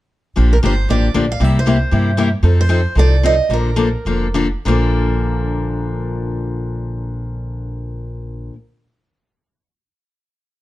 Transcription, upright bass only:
0, 0, Header, 1, 2, 480
1, 0, Start_track
1, 0, Key_signature, -2, "major"
1, 0, Tempo, 258844
1, 686, Time_signature, 4, 2, 24, 8
1, 5488, Tempo, 273723
1, 7408, Tempo, 303183
1, 17795, End_track
2, 0, Start_track
2, 0, Title_t, "Upright bass"
2, 0, Program_c, 0, 32
2, 687, Note_on_c, 0, 34, 77
2, 1069, Note_off_c, 0, 34, 0
2, 1178, Note_on_c, 0, 31, 78
2, 1579, Note_off_c, 0, 31, 0
2, 1648, Note_on_c, 0, 33, 73
2, 2053, Note_off_c, 0, 33, 0
2, 2121, Note_on_c, 0, 34, 77
2, 2529, Note_off_c, 0, 34, 0
2, 2605, Note_on_c, 0, 36, 82
2, 3371, Note_off_c, 0, 36, 0
2, 3564, Note_on_c, 0, 43, 79
2, 4331, Note_off_c, 0, 43, 0
2, 4503, Note_on_c, 0, 41, 79
2, 5285, Note_off_c, 0, 41, 0
2, 5482, Note_on_c, 0, 36, 74
2, 6237, Note_off_c, 0, 36, 0
2, 6420, Note_on_c, 0, 34, 77
2, 7207, Note_off_c, 0, 34, 0
2, 7405, Note_on_c, 0, 29, 72
2, 8155, Note_off_c, 0, 29, 0
2, 8359, Note_on_c, 0, 34, 85
2, 14424, Note_off_c, 0, 34, 0
2, 17795, End_track
0, 0, End_of_file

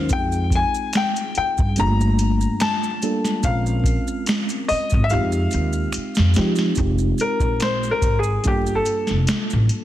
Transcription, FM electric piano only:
0, 0, Header, 1, 2, 480
1, 0, Start_track
1, 0, Tempo, 833333
1, 58, Time_signature, 4, 2, 24, 8
1, 5669, End_track
2, 0, Start_track
2, 0, Title_t, "FM electric piano"
2, 0, Program_c, 0, 5
2, 0, Control_c, 0, 64, 127
2, 0, Note_on_c, 0, 54, 70
2, 0, Note_on_c, 0, 61, 69
2, 0, Note_on_c, 0, 63, 72
2, 0, Note_on_c, 0, 65, 64
2, 0, Note_on_c, 0, 70, 89
2, 0, Note_on_c, 0, 72, 86
2, 60, Note_on_c, 0, 56, 69
2, 62, Note_on_c, 0, 60, 60
2, 66, Note_off_c, 0, 63, 0
2, 66, Control_c, 0, 64, 0
2, 66, Note_on_c, 0, 63, 63
2, 68, Note_off_c, 0, 65, 0
2, 68, Note_off_c, 0, 72, 0
2, 69, Note_off_c, 0, 54, 0
2, 69, Note_off_c, 0, 70, 0
2, 70, Note_on_c, 0, 67, 57
2, 71, Note_off_c, 0, 61, 0
2, 104, Note_off_c, 0, 67, 0
2, 108, Note_on_c, 0, 68, 70
2, 166, Control_c, 0, 64, 127
2, 942, Note_off_c, 0, 56, 0
2, 943, Note_off_c, 0, 60, 0
2, 945, Note_off_c, 0, 63, 0
2, 966, Note_off_c, 0, 68, 0
2, 1020, Note_on_c, 0, 55, 76
2, 1024, Note_on_c, 0, 58, 73
2, 1026, Control_c, 0, 64, 0
2, 1029, Note_on_c, 0, 62, 67
2, 1032, Note_on_c, 0, 65, 69
2, 1033, Note_on_c, 0, 68, 63
2, 1065, Note_off_c, 0, 68, 0
2, 1071, Note_on_c, 0, 57, 84
2, 1122, Control_c, 0, 64, 127
2, 1681, Note_off_c, 0, 55, 0
2, 1683, Note_off_c, 0, 58, 0
2, 1686, Note_off_c, 0, 62, 0
2, 1687, Note_off_c, 0, 65, 0
2, 1707, Note_off_c, 0, 57, 0
2, 1743, Note_on_c, 0, 55, 72
2, 1744, Note_on_c, 0, 58, 62
2, 1747, Note_on_c, 0, 62, 72
2, 1747, Note_on_c, 0, 65, 59
2, 1750, Note_on_c, 0, 69, 85
2, 1961, Note_off_c, 0, 55, 0
2, 1962, Note_off_c, 0, 58, 0
2, 1963, Note_off_c, 0, 62, 0
2, 1963, Note_off_c, 0, 65, 0
2, 1965, Note_off_c, 0, 69, 0
2, 1979, Note_on_c, 0, 56, 66
2, 1984, Note_on_c, 0, 60, 63
2, 1984, Note_on_c, 0, 61, 62
2, 1986, Control_c, 0, 64, 0
2, 1987, Note_on_c, 0, 65, 60
2, 1991, Note_on_c, 0, 70, 74
2, 2081, Control_c, 0, 64, 127
2, 2861, Note_off_c, 0, 56, 0
2, 2864, Note_off_c, 0, 60, 0
2, 2864, Note_off_c, 0, 61, 0
2, 2865, Note_off_c, 0, 65, 0
2, 2867, Note_off_c, 0, 70, 0
2, 2938, Note_on_c, 0, 55, 58
2, 2943, Note_on_c, 0, 60, 69
2, 2946, Control_c, 0, 64, 0
2, 2946, Note_on_c, 0, 63, 63
2, 2947, Note_on_c, 0, 65, 67
2, 2951, Note_on_c, 0, 67, 92
2, 2976, Note_on_c, 0, 56, 75
2, 2978, Note_off_c, 0, 55, 0
2, 3046, Control_c, 0, 64, 127
2, 3603, Note_off_c, 0, 60, 0
2, 3604, Note_off_c, 0, 63, 0
2, 3605, Note_off_c, 0, 65, 0
2, 3606, Note_off_c, 0, 67, 0
2, 3619, Note_off_c, 0, 56, 0
2, 3664, Note_on_c, 0, 60, 76
2, 3665, Note_on_c, 0, 56, 81
2, 3669, Note_on_c, 0, 63, 80
2, 3670, Note_on_c, 0, 65, 76
2, 3674, Note_on_c, 0, 67, 92
2, 3882, Note_off_c, 0, 56, 0
2, 3882, Note_off_c, 0, 60, 0
2, 3884, Note_off_c, 0, 63, 0
2, 3885, Note_off_c, 0, 65, 0
2, 3887, Note_off_c, 0, 67, 0
2, 3903, Note_on_c, 0, 56, 72
2, 3906, Control_c, 0, 64, 0
2, 3908, Note_on_c, 0, 60, 60
2, 3909, Note_on_c, 0, 63, 64
2, 3912, Note_on_c, 0, 65, 67
2, 3913, Note_on_c, 0, 67, 78
2, 3996, Control_c, 0, 64, 127
2, 4783, Note_off_c, 0, 56, 0
2, 4786, Note_off_c, 0, 60, 0
2, 4786, Note_off_c, 0, 63, 0
2, 4788, Note_off_c, 0, 65, 0
2, 4789, Note_off_c, 0, 67, 0
2, 4860, Note_on_c, 0, 55, 64
2, 4864, Note_on_c, 0, 58, 66
2, 4866, Control_c, 0, 64, 0
2, 4867, Note_on_c, 0, 62, 59
2, 4871, Note_on_c, 0, 65, 60
2, 4873, Note_on_c, 0, 69, 80
2, 4970, Control_c, 0, 64, 127
2, 5669, Note_off_c, 0, 55, 0
2, 5669, Note_off_c, 0, 58, 0
2, 5669, Note_off_c, 0, 62, 0
2, 5669, Note_off_c, 0, 65, 0
2, 5669, Note_off_c, 0, 69, 0
2, 5669, End_track
0, 0, End_of_file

